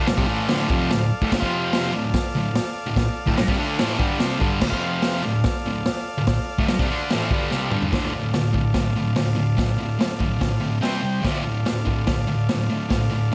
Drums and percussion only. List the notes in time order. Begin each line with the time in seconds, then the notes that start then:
0.07 snare, open hi-hat
0.18 kick
0.49 snare, open hi-hat
0.70 kick
0.90 snare, open hi-hat
1.22 kick
1.32 kick, snare, crash
1.42 kick
1.73 snare, open hi-hat
2.14 kick, snare, open hi-hat
2.55 snare, open hi-hat
2.96 kick, snare, open hi-hat
3.27 kick
3.37 snare, open hi-hat
3.48 kick
3.79 snare, open hi-hat
4.00 kick
4.20 snare, open hi-hat
4.41 kick
4.61 kick, snare, crash
4.72 kick
5.02 snare, open hi-hat
5.44 kick, snare, open hi-hat
5.85 snare, open hi-hat
6.27 kick, snare, open hi-hat
6.59 kick
6.68 snare, open hi-hat
6.79 kick
7.10 snare, open hi-hat
7.31 kick
7.51 snare
7.71 mid tom
7.82 floor tom
7.93 kick, snare, open hi-hat
8.33 snare, open hi-hat
8.54 kick
8.74 kick, snare, open hi-hat
9.16 snare, open hi-hat
9.58 kick, snare, open hi-hat
10.00 snare, open hi-hat
10.20 kick
10.41 kick, snare, open hi-hat
10.83 snare, open hi-hat
11.24 kick, snare, open hi-hat
11.66 snare, open hi-hat
11.87 kick
12.07 kick, snare, open hi-hat
12.49 snare, open hi-hat
12.90 kick, snare, open hi-hat